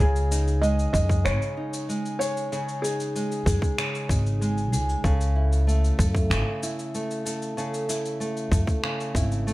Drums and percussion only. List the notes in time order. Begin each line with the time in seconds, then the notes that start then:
0.00 shaker
0.16 shaker
0.32 shaker
0.48 shaker
0.63 shaker
0.79 shaker
0.94 kick, shaker
1.09 kick, shaker
1.26 finger snap, shaker
1.42 shaker
1.74 shaker
1.90 shaker
2.06 shaker
2.21 shaker
2.37 shaker
2.53 shaker
2.69 shaker
2.84 shaker
3.00 shaker
3.16 shaker
3.32 shaker
3.46 kick, shaker
3.62 kick, shaker
3.78 finger snap, shaker
3.95 shaker
4.09 kick, shaker
4.26 shaker
4.42 shaker
4.58 shaker
4.73 shaker
4.89 shaker
5.04 kick, shaker
5.21 shaker
5.53 shaker
5.69 shaker
5.84 shaker
5.99 kick, shaker
6.15 kick, shaker
6.31 finger snap, shaker
6.63 shaker
6.79 shaker
6.95 shaker
7.11 shaker
7.26 shaker
7.42 shaker
7.58 shaker
7.74 shaker
7.89 shaker
8.05 shaker
8.21 shaker
8.37 shaker
8.52 kick, shaker
8.67 kick, shaker
8.84 finger snap
9.00 shaker
9.15 kick, shaker
9.32 shaker
9.48 shaker